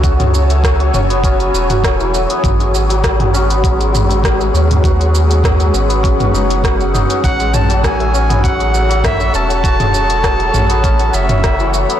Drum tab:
HH |xx-xxx-xxx-xx--x|xx-xxx-xxx-xx--x|xx-xxx-xxx-xx--x|xx-xxx-xxx-xx--x|
SH |xxxxx-xxxxxxxxxx|xxxxx-xxxxxxxxxx|xxxxxxxxxxxxxxxx|xxxxx-xxxxxxxxxx|
SD |----r-------r---|----r-------r---|----r-------r---|----r-------r---|
T2 |-o----o----o----|o----o----o----o|----o----o----o-|--o----o----o---|
BD |o---o---o---o---|o---o---o---o---|o---o---o---o---|o---o---o---o---|

HH |xx-xxx-xxx-xx--x|
SH |xxxxx-xxxxxxxxxx|
SD |----r-------r---|
T2 |-o----o----o----|
BD |o---o---o---o---|